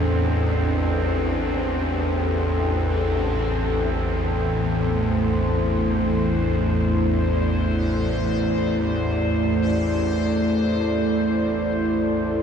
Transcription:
Already playing: A1 E2 C4 D4 A4
4.71 A3 C5
5.27 E4
6.91 D5

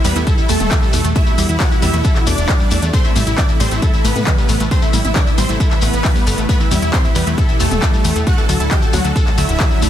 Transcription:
Already playing: B2 E3 G3 E4 G4, impact
0.05 E2 G3 B3 B4 B5, open hi-hat, shekere
0.16 E2 A3 E4 E5, closed hi-hat, shekere
0.27 E4 A4 E5, kick, closed hi-hat, shekere
0.38 E4 E5, shekere
0.49 E2 A3 A4 A5, open hi-hat, shekere
0.60 E1, closed hi-hat, mid tom, shekere
0.71 E3, kick, clap, closed hi-hat, shekere
0.82 G3, shekere
0.93 E2 A3, open hi-hat, shekere
1.04 E2 A3, closed hi-hat, shekere
1.15 A3 E4 F#4 E5 E6, kick, closed hi-hat, shekere
1.26 A3 E4 E5, shekere
1.38 E2 G3 E4 E5, open hi-hat, shekere
1.49 E2 E4 E5, closed hi-hat, shekere
1.60 E3 F#4 F#5 F#6, kick, clap, closed hi-hat, shekere
1.71 E4 E5, shekere
1.82 E2 G3 E4 E5 E6, open hi-hat, mid tom, shekere
1.93 E2 A3 E4 E5, closed hi-hat, shekere
2.04 E4 A4 E5, kick, closed hi-hat, shekere
2.16 E4 E5, clap, shekere
2.27 E2 A3 D4 D5 D6, open hi-hat, shekere
2.38 E1, closed hi-hat, shekere
2.48 E3, kick, clap, closed hi-hat, shekere
2.60 G3, shekere
2.71 E2 A3, open hi-hat, shekere
2.82 E2 A3, closed hi-hat, shekere
2.93 C3 A3 C4 A4 C5 C6, kick, closed hi-hat, shekere
3.04 A3 E4 E5, shekere
3.16 A1 G3 E4 E5, open hi-hat, mid tom, shekere
3.27 A1 E4 E5, closed hi-hat, shekere
3.38 E3 D4 D5 D6, kick, clap, closed hi-hat, shekere
3.48 E4 E5, shekere
3.60 A1 G3 C4 C5 C6, open hi-hat, shekere
3.71 A1 A3 E4 E5, closed hi-hat, shekere
3.82 E4 A4 E5, kick, closed hi-hat, shekere
3.93 E4 E5, shekere
4.05 A1 A3 B3 B4 B5, open hi-hat, shekere
4.16 A2, closed hi-hat, mid tom, shekere
4.26 E3, kick, clap, closed hi-hat, shekere
4.38 G3, shekere
4.49 A1 A3, open hi-hat, shekere
4.60 A1 A3, closed hi-hat, shekere
4.71 A3 C4 B4 C5 C6, kick, closed hi-hat, shekere
4.82 A3 E4 E5, shekere
4.93 A1 G3 E4 E5, open hi-hat, mid tom, shekere
5.04 A1 E4 E5, closed hi-hat, mid tom, shekere
5.16 E3 D4 D5 D6, kick, clap, closed hi-hat, shekere
5.27 E4 E5, shekere
5.38 A1 G3 C4 C5 C6, open hi-hat, mid tom, shekere
5.49 A1 A3 E4 E5, closed hi-hat, shekere
5.60 E4 A4 E5, kick, closed hi-hat, shekere
5.71 E4 E5, clap, shekere
5.81 A1 A3 B3 B4 B5, open hi-hat, shekere
5.93 A1, closed hi-hat, shekere
6.04 E3, kick, clap, open hi-hat, shekere
6.16 G3, shekere
6.27 G1 A3, open hi-hat, shekere
6.38 A1 A3, closed hi-hat, shekere
6.49 B2 G3 A3 B3 G4 B4 B5, kick, closed hi-hat, shekere
6.60 E3 E4 E5, shekere
6.71 E2 G3 E4 E5, open hi-hat, mid tom, shekere
6.82 E2 E4 E5, closed hi-hat, shekere
6.93 E3 C4 C5 C6, kick, clap, closed hi-hat, shekere
7.04 E4 E5, shekere
7.15 E2 G3 B3 B4 B5, open hi-hat, shekere
7.27 E2 A3 E4 E5, closed hi-hat, shekere
7.38 E4 A4 E5, kick, closed hi-hat, shekere
7.48 E4 E5, shekere
7.60 E2 A3 A4 A5, open hi-hat, shekere
7.71 E1, closed hi-hat, mid tom, shekere
7.82 E3, kick, clap, closed hi-hat, shekere
7.93 G3, shekere
8.04 E2 A3, open hi-hat, shekere
8.16 E2 A3, closed hi-hat, shekere
8.27 A2 D3 F#3 A3 D4 F#4 F#5 F#6, kick, closed hi-hat, shekere
8.38 E3 A4 A5, shekere
8.49 D2 F#3 A4 A5, open hi-hat, shekere
8.60 D2 E4 A4 A5, closed hi-hat, shekere
8.71 E3 G4 G5 G6, kick, clap, closed hi-hat, shekere
8.82 A4 A5, shekere
8.93 D2 F#3 F#4 F#5 F#6, open hi-hat, mid tom, shekere
9.04 D2 A3 A4 A5, closed hi-hat, shekere
9.16 A4 A5, kick, closed hi-hat, shekere
9.27 A4 A5, clap, shekere
9.38 D2 A3 E4 E5 E6, open hi-hat, shekere
9.49 D1, closed hi-hat, shekere
9.60 E3, kick, clap, closed hi-hat, shekere
9.70 F#3, shekere
9.82 D2 A3, open hi-hat, shekere

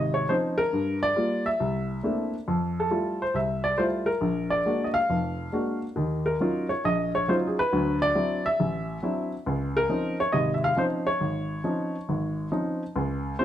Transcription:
Already playing: G#1 C3 D#5
0.14 C#5
0.29 F3 C4 C#4 D#4 C5
0.58 A#4
0.73 G2
1.03 D5
1.16 G3 A#3 F4
1.46 E5
1.60 C2
2.03 A3 A#3 C4 D4 E4
2.48 F2
2.80 A4
2.90 G3 A3 E4 F4
3.22 C5
3.34 C2 E5
3.64 D5
3.78 G3 A3 E4 F4 C5
4.06 A#4
4.21 A#1
4.50 D5
4.65 G#3 A#3 D4 F#4
4.84 D#5
4.94 F5
5.09 F1 F2
5.52 G#3 A#3 D4 F#4
5.96 D#2 D#3
6.26 A#4
6.40 F#3 C#4 D#4 F4
6.69 C#5
6.85 A#1 D#5
7.15 C#5
7.28 F#3 C#4 D#4 F4 C5
7.47 G#4
7.59 B4
7.73 D2 F#3
8.02 D5
8.15 F#3 C4 D4 E4
8.46 E5
8.60 A1
9.03 F#3 C4 D4 E4
9.46 C#2
9.77 A#4
9.89 F3 C4 C#4 D#4
10.20 C#5
10.32 G#1 C3 D#5
10.54 E5
10.64 F5
10.76 F3 C4 C#4 D#4 C5
11.07 C#5
11.20 G#1
11.64 F3 C4 C#4 D#4
12.09 G#1
12.51 F3 C4 C#4 D#4
12.96 C#2
13.39 C4 C#4 F4 C5

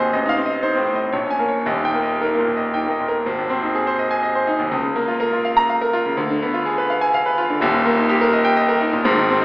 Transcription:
Already playing: G#1 D#2 C4 D#4 C5 D#5 G#5
0.13 A1 D#5
0.25 D#4 F5
0.37 C4
0.46 D#5
0.63 D#4 C5
0.75 A2 C4
0.87 A2
0.95 D#5
1.12 A#1 C#5
1.26 C#4
1.30 G#5
1.39 A#3
1.48 C#5
1.65 D#1 D#2 D#5
1.80 D#4
1.85 G5
1.94 A#3
2.03 D#5
2.21 D#4 A#4
2.34 A#3
2.39 A#2
2.48 A#2
2.57 D#5
2.74 D#4 G5
2.86 A#3
2.91 D#5
2.99 A#2
3.08 A#4
3.26 G#1
3.38 D#2
3.50 C4
3.62 D#4
3.75 G#4
3.87 C5
3.99 D#5
4.11 G#5
4.23 D#5
4.35 C5
4.47 D#4
4.59 D#2
4.71 C#2
4.83 C#3
4.96 A#3
5.08 F4
5.20 A#4
5.33 F4
5.45 F5
5.57 A#5
5.70 F5
5.81 A#4
5.93 F4
6.05 C#3
6.17 D2
6.30 D3
6.42 B3
6.54 F4
6.65 G#4
6.78 B4
6.90 F5
7.01 G#5
7.14 F5
7.26 B4
7.38 F4
7.50 D3
7.61 D#1 D#2
7.74 A#2
7.85 A#3
7.97 D#4
8.09 G4
8.21 A#4
8.33 D#5
8.45 G5
8.57 D#5
8.69 A#4
8.81 D#4
8.93 A#2
9.04 G#1 G#2
9.17 D#3
9.30 C4
9.41 D#4

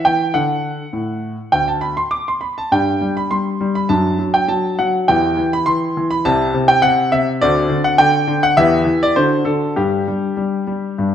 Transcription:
Already playing: C#4 A4
0.05 E3 G5
0.34 D3 D4 A4 F#5
0.93 A2
1.52 D2 G5
1.68 A5
1.81 B5
1.97 C6
2.11 D6
2.28 C6
2.41 B5
2.58 A5
2.72 G2 G3 D4 G4 G5
3.01 G3
3.17 B5
3.31 G3 C6
3.61 G3
3.75 B5
3.89 F#2 F#3 D4 A5
4.19 F#3
4.34 G5
4.48 F#3 A5
4.79 F#3 F#5
5.08 E2 E3 E4 G4 G5
5.37 E3
5.53 B5
5.66 E3 C6
5.97 E3
6.11 B5
6.25 C2 C3 E4 G4 A5
6.54 C3
6.68 G5
6.82 C3 F#5
7.12 C3 E5
7.41 D2 D3 C4 F#4 D5
7.70 D3
7.84 F#5
7.98 D3 G5
8.27 D3
8.43 F#5
8.57 E2 E3 B3 G4 E5
8.85 E3
9.03 D5
9.16 D3 D4 F#4 C5
9.45 D3 A4
9.76 G2 G3 D4 G4
10.08 G3
10.37 G3
10.67 G3
10.98 G2 G3

